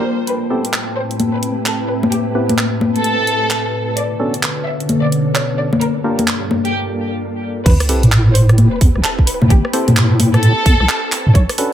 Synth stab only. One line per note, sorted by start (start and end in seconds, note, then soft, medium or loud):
0.50 0.64 B3 medium
0.50 0.64 C4 medium
0.50 0.64 E4 medium
0.50 0.64 G4 medium
0.50 0.64 A4 medium
2.35 2.54 B3 medium
2.35 2.54 C4 medium
2.35 2.54 E4 medium
2.35 2.54 G4 medium
2.35 2.54 B4 medium
4.20 4.33 B3 medium
4.20 4.33 C#4 medium
4.20 4.33 D4 medium
4.20 4.33 F#4 medium
4.20 4.33 A4 medium
6.04 6.23 A#3 medium
6.04 6.23 D4 medium
6.04 6.23 F4 medium
6.04 6.23 G4 medium
6.04 6.23 A#4 medium
7.89 8.03 C4 medium
7.89 8.03 E4 medium
7.89 8.03 G4 medium
7.89 8.03 A4 medium
7.89 8.03 B4 medium
9.73 9.92 C4 medium
9.73 9.92 E4 medium
9.73 9.92 G4 medium
9.73 9.92 A4 medium
9.73 9.92 C5 medium
11.58 11.72 C#4 medium
11.58 11.72 D4 medium
11.58 11.72 F#4 medium
11.58 11.72 A4 medium
11.58 11.72 B4 medium